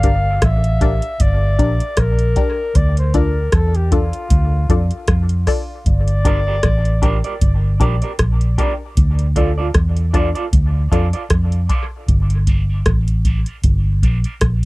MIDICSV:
0, 0, Header, 1, 6, 480
1, 0, Start_track
1, 0, Tempo, 778210
1, 1696, Time_signature, 4, 2, 24, 8
1, 9037, End_track
2, 0, Start_track
2, 0, Title_t, "Flugelhorn"
2, 0, Program_c, 0, 56
2, 0, Note_on_c, 0, 77, 124
2, 266, Note_off_c, 0, 77, 0
2, 271, Note_on_c, 0, 76, 101
2, 748, Note_on_c, 0, 74, 104
2, 758, Note_off_c, 0, 76, 0
2, 1229, Note_on_c, 0, 70, 96
2, 1238, Note_off_c, 0, 74, 0
2, 1703, Note_on_c, 0, 74, 97
2, 1712, Note_off_c, 0, 70, 0
2, 1833, Note_off_c, 0, 74, 0
2, 1841, Note_on_c, 0, 72, 82
2, 1934, Note_off_c, 0, 72, 0
2, 1947, Note_on_c, 0, 70, 91
2, 2186, Note_on_c, 0, 69, 89
2, 2195, Note_off_c, 0, 70, 0
2, 2318, Note_on_c, 0, 67, 80
2, 2327, Note_off_c, 0, 69, 0
2, 2419, Note_on_c, 0, 65, 87
2, 2428, Note_off_c, 0, 67, 0
2, 3136, Note_off_c, 0, 65, 0
2, 3626, Note_on_c, 0, 74, 120
2, 4554, Note_off_c, 0, 74, 0
2, 9037, End_track
3, 0, Start_track
3, 0, Title_t, "Clean electric guitar"
3, 0, Program_c, 1, 27
3, 3856, Note_on_c, 1, 67, 75
3, 3863, Note_on_c, 1, 70, 87
3, 3868, Note_on_c, 1, 74, 91
3, 3939, Note_off_c, 1, 67, 0
3, 3943, Note_off_c, 1, 70, 0
3, 3945, Note_off_c, 1, 74, 0
3, 3991, Note_on_c, 1, 74, 65
3, 3996, Note_on_c, 1, 70, 60
3, 4001, Note_on_c, 1, 67, 50
3, 4042, Note_off_c, 1, 74, 0
3, 4044, Note_off_c, 1, 70, 0
3, 4047, Note_off_c, 1, 67, 0
3, 4333, Note_on_c, 1, 67, 77
3, 4341, Note_on_c, 1, 70, 89
3, 4345, Note_on_c, 1, 74, 87
3, 4418, Note_off_c, 1, 67, 0
3, 4422, Note_off_c, 1, 70, 0
3, 4423, Note_off_c, 1, 74, 0
3, 4469, Note_on_c, 1, 74, 57
3, 4476, Note_on_c, 1, 70, 54
3, 4480, Note_on_c, 1, 67, 44
3, 4520, Note_off_c, 1, 74, 0
3, 4524, Note_off_c, 1, 70, 0
3, 4526, Note_off_c, 1, 67, 0
3, 4817, Note_on_c, 1, 67, 72
3, 4820, Note_on_c, 1, 70, 77
3, 4826, Note_on_c, 1, 74, 81
3, 4899, Note_off_c, 1, 67, 0
3, 4901, Note_off_c, 1, 70, 0
3, 4904, Note_off_c, 1, 74, 0
3, 4949, Note_on_c, 1, 74, 59
3, 4957, Note_on_c, 1, 70, 51
3, 4960, Note_on_c, 1, 67, 49
3, 5000, Note_off_c, 1, 74, 0
3, 5004, Note_off_c, 1, 70, 0
3, 5006, Note_off_c, 1, 67, 0
3, 5294, Note_on_c, 1, 67, 83
3, 5299, Note_on_c, 1, 70, 85
3, 5305, Note_on_c, 1, 74, 89
3, 5378, Note_off_c, 1, 67, 0
3, 5380, Note_off_c, 1, 70, 0
3, 5383, Note_off_c, 1, 74, 0
3, 5773, Note_on_c, 1, 65, 71
3, 5780, Note_on_c, 1, 69, 79
3, 5784, Note_on_c, 1, 74, 81
3, 5857, Note_off_c, 1, 65, 0
3, 5861, Note_off_c, 1, 69, 0
3, 5863, Note_off_c, 1, 74, 0
3, 5907, Note_on_c, 1, 74, 61
3, 5913, Note_on_c, 1, 69, 54
3, 5919, Note_on_c, 1, 65, 52
3, 5959, Note_off_c, 1, 74, 0
3, 5962, Note_off_c, 1, 69, 0
3, 5965, Note_off_c, 1, 65, 0
3, 6253, Note_on_c, 1, 65, 82
3, 6257, Note_on_c, 1, 69, 96
3, 6264, Note_on_c, 1, 74, 99
3, 6337, Note_off_c, 1, 65, 0
3, 6340, Note_off_c, 1, 69, 0
3, 6343, Note_off_c, 1, 74, 0
3, 6384, Note_on_c, 1, 74, 67
3, 6390, Note_on_c, 1, 69, 57
3, 6394, Note_on_c, 1, 65, 52
3, 6438, Note_off_c, 1, 74, 0
3, 6441, Note_off_c, 1, 69, 0
3, 6443, Note_off_c, 1, 65, 0
3, 6733, Note_on_c, 1, 65, 78
3, 6739, Note_on_c, 1, 69, 74
3, 6743, Note_on_c, 1, 74, 88
3, 6818, Note_off_c, 1, 65, 0
3, 6821, Note_off_c, 1, 69, 0
3, 6823, Note_off_c, 1, 74, 0
3, 6867, Note_on_c, 1, 74, 58
3, 6874, Note_on_c, 1, 69, 55
3, 6876, Note_on_c, 1, 65, 50
3, 6920, Note_off_c, 1, 74, 0
3, 6923, Note_off_c, 1, 69, 0
3, 6924, Note_off_c, 1, 65, 0
3, 7214, Note_on_c, 1, 65, 78
3, 7219, Note_on_c, 1, 69, 93
3, 7225, Note_on_c, 1, 74, 88
3, 7298, Note_off_c, 1, 65, 0
3, 7301, Note_off_c, 1, 69, 0
3, 7304, Note_off_c, 1, 74, 0
3, 7698, Note_on_c, 1, 67, 76
3, 7702, Note_on_c, 1, 70, 81
3, 7706, Note_on_c, 1, 74, 89
3, 7780, Note_off_c, 1, 67, 0
3, 7782, Note_off_c, 1, 70, 0
3, 7784, Note_off_c, 1, 74, 0
3, 7831, Note_on_c, 1, 74, 61
3, 7835, Note_on_c, 1, 70, 52
3, 7841, Note_on_c, 1, 67, 54
3, 7882, Note_off_c, 1, 74, 0
3, 7884, Note_off_c, 1, 70, 0
3, 7887, Note_off_c, 1, 67, 0
3, 8174, Note_on_c, 1, 67, 80
3, 8180, Note_on_c, 1, 70, 85
3, 8185, Note_on_c, 1, 74, 95
3, 8258, Note_off_c, 1, 67, 0
3, 8262, Note_off_c, 1, 70, 0
3, 8264, Note_off_c, 1, 74, 0
3, 8312, Note_on_c, 1, 74, 55
3, 8317, Note_on_c, 1, 70, 50
3, 8323, Note_on_c, 1, 67, 45
3, 8362, Note_off_c, 1, 74, 0
3, 8365, Note_off_c, 1, 70, 0
3, 8368, Note_off_c, 1, 67, 0
3, 8656, Note_on_c, 1, 67, 74
3, 8660, Note_on_c, 1, 70, 88
3, 8667, Note_on_c, 1, 74, 82
3, 8740, Note_off_c, 1, 67, 0
3, 8742, Note_off_c, 1, 70, 0
3, 8745, Note_off_c, 1, 74, 0
3, 8792, Note_on_c, 1, 74, 61
3, 8796, Note_on_c, 1, 70, 54
3, 8801, Note_on_c, 1, 67, 48
3, 8842, Note_off_c, 1, 74, 0
3, 8844, Note_off_c, 1, 70, 0
3, 8847, Note_off_c, 1, 67, 0
3, 9037, End_track
4, 0, Start_track
4, 0, Title_t, "Synth stab"
4, 0, Program_c, 2, 62
4, 22, Note_on_c, 2, 62, 91
4, 22, Note_on_c, 2, 67, 85
4, 25, Note_on_c, 2, 70, 82
4, 28, Note_on_c, 2, 74, 104
4, 164, Note_off_c, 2, 62, 0
4, 165, Note_off_c, 2, 67, 0
4, 166, Note_off_c, 2, 70, 0
4, 168, Note_off_c, 2, 74, 0
4, 500, Note_on_c, 2, 62, 92
4, 502, Note_on_c, 2, 67, 83
4, 505, Note_on_c, 2, 70, 89
4, 507, Note_on_c, 2, 74, 105
4, 643, Note_off_c, 2, 62, 0
4, 644, Note_off_c, 2, 67, 0
4, 645, Note_off_c, 2, 70, 0
4, 646, Note_off_c, 2, 74, 0
4, 978, Note_on_c, 2, 62, 92
4, 981, Note_on_c, 2, 67, 83
4, 983, Note_on_c, 2, 70, 82
4, 986, Note_on_c, 2, 74, 100
4, 1122, Note_off_c, 2, 62, 0
4, 1123, Note_off_c, 2, 67, 0
4, 1124, Note_off_c, 2, 70, 0
4, 1126, Note_off_c, 2, 74, 0
4, 1457, Note_on_c, 2, 62, 95
4, 1458, Note_on_c, 2, 67, 80
4, 1461, Note_on_c, 2, 70, 81
4, 1464, Note_on_c, 2, 74, 97
4, 1601, Note_off_c, 2, 62, 0
4, 1601, Note_off_c, 2, 67, 0
4, 1603, Note_off_c, 2, 70, 0
4, 1604, Note_off_c, 2, 74, 0
4, 1938, Note_on_c, 2, 62, 96
4, 1940, Note_on_c, 2, 65, 88
4, 1942, Note_on_c, 2, 69, 81
4, 1945, Note_on_c, 2, 74, 100
4, 2080, Note_off_c, 2, 62, 0
4, 2082, Note_off_c, 2, 65, 0
4, 2082, Note_off_c, 2, 69, 0
4, 2084, Note_off_c, 2, 74, 0
4, 2416, Note_on_c, 2, 62, 94
4, 2418, Note_on_c, 2, 65, 85
4, 2421, Note_on_c, 2, 69, 86
4, 2423, Note_on_c, 2, 74, 101
4, 2559, Note_off_c, 2, 62, 0
4, 2560, Note_off_c, 2, 65, 0
4, 2562, Note_off_c, 2, 69, 0
4, 2562, Note_off_c, 2, 74, 0
4, 2897, Note_on_c, 2, 62, 87
4, 2900, Note_on_c, 2, 65, 78
4, 2901, Note_on_c, 2, 69, 82
4, 2904, Note_on_c, 2, 74, 102
4, 3039, Note_off_c, 2, 62, 0
4, 3041, Note_off_c, 2, 65, 0
4, 3041, Note_off_c, 2, 69, 0
4, 3043, Note_off_c, 2, 74, 0
4, 3374, Note_on_c, 2, 62, 94
4, 3377, Note_on_c, 2, 65, 85
4, 3380, Note_on_c, 2, 69, 85
4, 3382, Note_on_c, 2, 74, 99
4, 3518, Note_off_c, 2, 62, 0
4, 3519, Note_off_c, 2, 65, 0
4, 3521, Note_off_c, 2, 69, 0
4, 3521, Note_off_c, 2, 74, 0
4, 3853, Note_on_c, 2, 62, 92
4, 3856, Note_on_c, 2, 67, 79
4, 3858, Note_on_c, 2, 70, 80
4, 3861, Note_on_c, 2, 74, 97
4, 3997, Note_off_c, 2, 62, 0
4, 3998, Note_off_c, 2, 67, 0
4, 3999, Note_off_c, 2, 70, 0
4, 4001, Note_off_c, 2, 74, 0
4, 4329, Note_on_c, 2, 62, 93
4, 4333, Note_on_c, 2, 67, 82
4, 4335, Note_on_c, 2, 70, 83
4, 4337, Note_on_c, 2, 74, 99
4, 4475, Note_off_c, 2, 62, 0
4, 4477, Note_off_c, 2, 67, 0
4, 4478, Note_off_c, 2, 70, 0
4, 4479, Note_off_c, 2, 74, 0
4, 4809, Note_on_c, 2, 62, 80
4, 4814, Note_on_c, 2, 67, 75
4, 4815, Note_on_c, 2, 70, 81
4, 4818, Note_on_c, 2, 74, 100
4, 4955, Note_off_c, 2, 62, 0
4, 4957, Note_off_c, 2, 67, 0
4, 4958, Note_off_c, 2, 70, 0
4, 4959, Note_off_c, 2, 74, 0
4, 5292, Note_on_c, 2, 62, 93
4, 5295, Note_on_c, 2, 67, 82
4, 5297, Note_on_c, 2, 70, 82
4, 5300, Note_on_c, 2, 74, 104
4, 5436, Note_off_c, 2, 62, 0
4, 5438, Note_off_c, 2, 67, 0
4, 5439, Note_off_c, 2, 70, 0
4, 5440, Note_off_c, 2, 74, 0
4, 5772, Note_on_c, 2, 62, 91
4, 5776, Note_on_c, 2, 65, 78
4, 5777, Note_on_c, 2, 69, 77
4, 5779, Note_on_c, 2, 74, 96
4, 5916, Note_off_c, 2, 62, 0
4, 5918, Note_off_c, 2, 65, 0
4, 5919, Note_off_c, 2, 69, 0
4, 5920, Note_off_c, 2, 74, 0
4, 6250, Note_on_c, 2, 62, 95
4, 6253, Note_on_c, 2, 65, 81
4, 6256, Note_on_c, 2, 69, 82
4, 6258, Note_on_c, 2, 74, 99
4, 6395, Note_off_c, 2, 62, 0
4, 6397, Note_off_c, 2, 65, 0
4, 6398, Note_off_c, 2, 69, 0
4, 6399, Note_off_c, 2, 74, 0
4, 6732, Note_on_c, 2, 62, 84
4, 6733, Note_on_c, 2, 65, 74
4, 6737, Note_on_c, 2, 69, 80
4, 6739, Note_on_c, 2, 74, 95
4, 6877, Note_off_c, 2, 62, 0
4, 6877, Note_off_c, 2, 65, 0
4, 6879, Note_off_c, 2, 69, 0
4, 6880, Note_off_c, 2, 74, 0
4, 7211, Note_on_c, 2, 62, 92
4, 7213, Note_on_c, 2, 65, 85
4, 7216, Note_on_c, 2, 69, 85
4, 7218, Note_on_c, 2, 74, 97
4, 7356, Note_off_c, 2, 62, 0
4, 7357, Note_off_c, 2, 65, 0
4, 7358, Note_off_c, 2, 69, 0
4, 7359, Note_off_c, 2, 74, 0
4, 7690, Note_on_c, 2, 62, 86
4, 7693, Note_on_c, 2, 67, 86
4, 7695, Note_on_c, 2, 70, 80
4, 7700, Note_on_c, 2, 74, 99
4, 7836, Note_off_c, 2, 62, 0
4, 7837, Note_off_c, 2, 67, 0
4, 7838, Note_off_c, 2, 70, 0
4, 7840, Note_off_c, 2, 74, 0
4, 8175, Note_on_c, 2, 62, 87
4, 8177, Note_on_c, 2, 67, 82
4, 8179, Note_on_c, 2, 70, 77
4, 8181, Note_on_c, 2, 74, 98
4, 8318, Note_off_c, 2, 62, 0
4, 8319, Note_off_c, 2, 67, 0
4, 8320, Note_off_c, 2, 70, 0
4, 8321, Note_off_c, 2, 74, 0
4, 8651, Note_on_c, 2, 62, 83
4, 8652, Note_on_c, 2, 67, 78
4, 8655, Note_on_c, 2, 70, 77
4, 8658, Note_on_c, 2, 74, 96
4, 8796, Note_off_c, 2, 62, 0
4, 8797, Note_off_c, 2, 67, 0
4, 8799, Note_off_c, 2, 70, 0
4, 8800, Note_off_c, 2, 74, 0
4, 9037, End_track
5, 0, Start_track
5, 0, Title_t, "Fingered electric bass"
5, 0, Program_c, 3, 33
5, 0, Note_on_c, 3, 31, 93
5, 237, Note_off_c, 3, 31, 0
5, 262, Note_on_c, 3, 33, 91
5, 614, Note_off_c, 3, 33, 0
5, 742, Note_on_c, 3, 31, 89
5, 968, Note_off_c, 3, 31, 0
5, 982, Note_on_c, 3, 34, 91
5, 1106, Note_off_c, 3, 34, 0
5, 1221, Note_on_c, 3, 34, 84
5, 1447, Note_off_c, 3, 34, 0
5, 1699, Note_on_c, 3, 38, 96
5, 2153, Note_off_c, 3, 38, 0
5, 2179, Note_on_c, 3, 40, 88
5, 2531, Note_off_c, 3, 40, 0
5, 2658, Note_on_c, 3, 38, 94
5, 2884, Note_off_c, 3, 38, 0
5, 2896, Note_on_c, 3, 41, 92
5, 3022, Note_off_c, 3, 41, 0
5, 3136, Note_on_c, 3, 41, 86
5, 3363, Note_off_c, 3, 41, 0
5, 3617, Note_on_c, 3, 31, 88
5, 4071, Note_off_c, 3, 31, 0
5, 4096, Note_on_c, 3, 33, 86
5, 4449, Note_off_c, 3, 33, 0
5, 4575, Note_on_c, 3, 31, 82
5, 4801, Note_off_c, 3, 31, 0
5, 4814, Note_on_c, 3, 34, 85
5, 4940, Note_off_c, 3, 34, 0
5, 5056, Note_on_c, 3, 34, 85
5, 5282, Note_off_c, 3, 34, 0
5, 5535, Note_on_c, 3, 38, 96
5, 5990, Note_off_c, 3, 38, 0
5, 6015, Note_on_c, 3, 40, 86
5, 6369, Note_off_c, 3, 40, 0
5, 6496, Note_on_c, 3, 38, 91
5, 6723, Note_off_c, 3, 38, 0
5, 6734, Note_on_c, 3, 41, 88
5, 6860, Note_off_c, 3, 41, 0
5, 6975, Note_on_c, 3, 41, 92
5, 7202, Note_off_c, 3, 41, 0
5, 7454, Note_on_c, 3, 31, 95
5, 7910, Note_off_c, 3, 31, 0
5, 7936, Note_on_c, 3, 33, 85
5, 8289, Note_off_c, 3, 33, 0
5, 8413, Note_on_c, 3, 31, 86
5, 8641, Note_off_c, 3, 31, 0
5, 8653, Note_on_c, 3, 34, 86
5, 8780, Note_off_c, 3, 34, 0
5, 8893, Note_on_c, 3, 34, 80
5, 9037, Note_off_c, 3, 34, 0
5, 9037, End_track
6, 0, Start_track
6, 0, Title_t, "Drums"
6, 21, Note_on_c, 9, 42, 73
6, 22, Note_on_c, 9, 36, 93
6, 82, Note_off_c, 9, 42, 0
6, 84, Note_off_c, 9, 36, 0
6, 258, Note_on_c, 9, 42, 90
6, 259, Note_on_c, 9, 37, 107
6, 261, Note_on_c, 9, 36, 109
6, 320, Note_off_c, 9, 42, 0
6, 321, Note_off_c, 9, 37, 0
6, 323, Note_off_c, 9, 36, 0
6, 394, Note_on_c, 9, 42, 51
6, 456, Note_off_c, 9, 42, 0
6, 500, Note_on_c, 9, 36, 90
6, 501, Note_on_c, 9, 42, 76
6, 562, Note_off_c, 9, 36, 0
6, 562, Note_off_c, 9, 42, 0
6, 631, Note_on_c, 9, 42, 48
6, 692, Note_off_c, 9, 42, 0
6, 739, Note_on_c, 9, 42, 89
6, 740, Note_on_c, 9, 36, 111
6, 801, Note_off_c, 9, 42, 0
6, 802, Note_off_c, 9, 36, 0
6, 979, Note_on_c, 9, 36, 81
6, 982, Note_on_c, 9, 42, 64
6, 1041, Note_off_c, 9, 36, 0
6, 1044, Note_off_c, 9, 42, 0
6, 1112, Note_on_c, 9, 42, 49
6, 1174, Note_off_c, 9, 42, 0
6, 1214, Note_on_c, 9, 42, 97
6, 1217, Note_on_c, 9, 37, 119
6, 1219, Note_on_c, 9, 36, 97
6, 1275, Note_off_c, 9, 42, 0
6, 1278, Note_off_c, 9, 37, 0
6, 1281, Note_off_c, 9, 36, 0
6, 1349, Note_on_c, 9, 42, 52
6, 1410, Note_off_c, 9, 42, 0
6, 1456, Note_on_c, 9, 42, 73
6, 1458, Note_on_c, 9, 36, 91
6, 1518, Note_off_c, 9, 42, 0
6, 1520, Note_off_c, 9, 36, 0
6, 1697, Note_on_c, 9, 42, 85
6, 1699, Note_on_c, 9, 36, 105
6, 1758, Note_off_c, 9, 42, 0
6, 1760, Note_off_c, 9, 36, 0
6, 1833, Note_on_c, 9, 42, 53
6, 1894, Note_off_c, 9, 42, 0
6, 1937, Note_on_c, 9, 42, 78
6, 1938, Note_on_c, 9, 36, 86
6, 1999, Note_off_c, 9, 42, 0
6, 2000, Note_off_c, 9, 36, 0
6, 2173, Note_on_c, 9, 42, 81
6, 2174, Note_on_c, 9, 37, 107
6, 2177, Note_on_c, 9, 36, 107
6, 2235, Note_off_c, 9, 42, 0
6, 2236, Note_off_c, 9, 37, 0
6, 2239, Note_off_c, 9, 36, 0
6, 2310, Note_on_c, 9, 42, 52
6, 2372, Note_off_c, 9, 42, 0
6, 2416, Note_on_c, 9, 36, 94
6, 2417, Note_on_c, 9, 42, 80
6, 2478, Note_off_c, 9, 36, 0
6, 2479, Note_off_c, 9, 42, 0
6, 2549, Note_on_c, 9, 42, 47
6, 2611, Note_off_c, 9, 42, 0
6, 2654, Note_on_c, 9, 42, 88
6, 2656, Note_on_c, 9, 36, 112
6, 2716, Note_off_c, 9, 42, 0
6, 2717, Note_off_c, 9, 36, 0
6, 2894, Note_on_c, 9, 36, 82
6, 2897, Note_on_c, 9, 42, 61
6, 2956, Note_off_c, 9, 36, 0
6, 2959, Note_off_c, 9, 42, 0
6, 3026, Note_on_c, 9, 42, 48
6, 3088, Note_off_c, 9, 42, 0
6, 3131, Note_on_c, 9, 42, 94
6, 3133, Note_on_c, 9, 37, 115
6, 3135, Note_on_c, 9, 36, 107
6, 3192, Note_off_c, 9, 42, 0
6, 3195, Note_off_c, 9, 37, 0
6, 3197, Note_off_c, 9, 36, 0
6, 3264, Note_on_c, 9, 42, 55
6, 3326, Note_off_c, 9, 42, 0
6, 3374, Note_on_c, 9, 46, 67
6, 3375, Note_on_c, 9, 36, 80
6, 3375, Note_on_c, 9, 37, 64
6, 3436, Note_off_c, 9, 36, 0
6, 3436, Note_off_c, 9, 46, 0
6, 3437, Note_off_c, 9, 37, 0
6, 3615, Note_on_c, 9, 36, 101
6, 3615, Note_on_c, 9, 42, 84
6, 3676, Note_off_c, 9, 42, 0
6, 3677, Note_off_c, 9, 36, 0
6, 3748, Note_on_c, 9, 42, 53
6, 3810, Note_off_c, 9, 42, 0
6, 3855, Note_on_c, 9, 36, 87
6, 3856, Note_on_c, 9, 42, 75
6, 3917, Note_off_c, 9, 36, 0
6, 3918, Note_off_c, 9, 42, 0
6, 4089, Note_on_c, 9, 42, 83
6, 4090, Note_on_c, 9, 37, 104
6, 4094, Note_on_c, 9, 36, 100
6, 4151, Note_off_c, 9, 42, 0
6, 4152, Note_off_c, 9, 37, 0
6, 4155, Note_off_c, 9, 36, 0
6, 4226, Note_on_c, 9, 42, 51
6, 4288, Note_off_c, 9, 42, 0
6, 4333, Note_on_c, 9, 36, 89
6, 4334, Note_on_c, 9, 42, 71
6, 4395, Note_off_c, 9, 36, 0
6, 4396, Note_off_c, 9, 42, 0
6, 4466, Note_on_c, 9, 42, 46
6, 4528, Note_off_c, 9, 42, 0
6, 4573, Note_on_c, 9, 36, 103
6, 4573, Note_on_c, 9, 42, 89
6, 4635, Note_off_c, 9, 36, 0
6, 4635, Note_off_c, 9, 42, 0
6, 4812, Note_on_c, 9, 36, 78
6, 4815, Note_on_c, 9, 42, 62
6, 4874, Note_off_c, 9, 36, 0
6, 4876, Note_off_c, 9, 42, 0
6, 4946, Note_on_c, 9, 42, 47
6, 5007, Note_off_c, 9, 42, 0
6, 5050, Note_on_c, 9, 42, 91
6, 5053, Note_on_c, 9, 37, 114
6, 5054, Note_on_c, 9, 36, 105
6, 5112, Note_off_c, 9, 42, 0
6, 5115, Note_off_c, 9, 36, 0
6, 5115, Note_off_c, 9, 37, 0
6, 5187, Note_on_c, 9, 42, 50
6, 5249, Note_off_c, 9, 42, 0
6, 5294, Note_on_c, 9, 36, 84
6, 5295, Note_on_c, 9, 42, 69
6, 5355, Note_off_c, 9, 36, 0
6, 5356, Note_off_c, 9, 42, 0
6, 5533, Note_on_c, 9, 36, 100
6, 5533, Note_on_c, 9, 42, 86
6, 5595, Note_off_c, 9, 36, 0
6, 5595, Note_off_c, 9, 42, 0
6, 5667, Note_on_c, 9, 42, 49
6, 5729, Note_off_c, 9, 42, 0
6, 5773, Note_on_c, 9, 36, 90
6, 5774, Note_on_c, 9, 42, 78
6, 5835, Note_off_c, 9, 36, 0
6, 5835, Note_off_c, 9, 42, 0
6, 6010, Note_on_c, 9, 42, 83
6, 6011, Note_on_c, 9, 37, 100
6, 6013, Note_on_c, 9, 36, 107
6, 6072, Note_off_c, 9, 42, 0
6, 6073, Note_off_c, 9, 37, 0
6, 6075, Note_off_c, 9, 36, 0
6, 6147, Note_on_c, 9, 42, 49
6, 6208, Note_off_c, 9, 42, 0
6, 6253, Note_on_c, 9, 36, 85
6, 6254, Note_on_c, 9, 42, 71
6, 6315, Note_off_c, 9, 36, 0
6, 6316, Note_off_c, 9, 42, 0
6, 6387, Note_on_c, 9, 42, 43
6, 6449, Note_off_c, 9, 42, 0
6, 6494, Note_on_c, 9, 36, 109
6, 6495, Note_on_c, 9, 42, 91
6, 6556, Note_off_c, 9, 36, 0
6, 6557, Note_off_c, 9, 42, 0
6, 6734, Note_on_c, 9, 36, 77
6, 6739, Note_on_c, 9, 42, 64
6, 6795, Note_off_c, 9, 36, 0
6, 6801, Note_off_c, 9, 42, 0
6, 6866, Note_on_c, 9, 42, 52
6, 6928, Note_off_c, 9, 42, 0
6, 6970, Note_on_c, 9, 42, 95
6, 6973, Note_on_c, 9, 36, 106
6, 6973, Note_on_c, 9, 37, 115
6, 7031, Note_off_c, 9, 42, 0
6, 7034, Note_off_c, 9, 37, 0
6, 7035, Note_off_c, 9, 36, 0
6, 7106, Note_on_c, 9, 42, 53
6, 7168, Note_off_c, 9, 42, 0
6, 7213, Note_on_c, 9, 36, 84
6, 7214, Note_on_c, 9, 42, 73
6, 7275, Note_off_c, 9, 36, 0
6, 7275, Note_off_c, 9, 42, 0
6, 7453, Note_on_c, 9, 36, 100
6, 7454, Note_on_c, 9, 42, 79
6, 7515, Note_off_c, 9, 36, 0
6, 7516, Note_off_c, 9, 42, 0
6, 7587, Note_on_c, 9, 42, 49
6, 7648, Note_off_c, 9, 42, 0
6, 7692, Note_on_c, 9, 42, 77
6, 7693, Note_on_c, 9, 36, 90
6, 7754, Note_off_c, 9, 42, 0
6, 7755, Note_off_c, 9, 36, 0
6, 7930, Note_on_c, 9, 42, 81
6, 7932, Note_on_c, 9, 37, 105
6, 7933, Note_on_c, 9, 36, 107
6, 7992, Note_off_c, 9, 42, 0
6, 7993, Note_off_c, 9, 37, 0
6, 7995, Note_off_c, 9, 36, 0
6, 8066, Note_on_c, 9, 42, 50
6, 8128, Note_off_c, 9, 42, 0
6, 8172, Note_on_c, 9, 36, 86
6, 8172, Note_on_c, 9, 42, 78
6, 8234, Note_off_c, 9, 36, 0
6, 8234, Note_off_c, 9, 42, 0
6, 8303, Note_on_c, 9, 42, 46
6, 8365, Note_off_c, 9, 42, 0
6, 8410, Note_on_c, 9, 42, 86
6, 8412, Note_on_c, 9, 36, 111
6, 8472, Note_off_c, 9, 42, 0
6, 8474, Note_off_c, 9, 36, 0
6, 8652, Note_on_c, 9, 36, 80
6, 8655, Note_on_c, 9, 42, 63
6, 8713, Note_off_c, 9, 36, 0
6, 8717, Note_off_c, 9, 42, 0
6, 8784, Note_on_c, 9, 42, 49
6, 8846, Note_off_c, 9, 42, 0
6, 8888, Note_on_c, 9, 42, 91
6, 8891, Note_on_c, 9, 37, 114
6, 8892, Note_on_c, 9, 36, 99
6, 8950, Note_off_c, 9, 42, 0
6, 8952, Note_off_c, 9, 37, 0
6, 8954, Note_off_c, 9, 36, 0
6, 9037, End_track
0, 0, End_of_file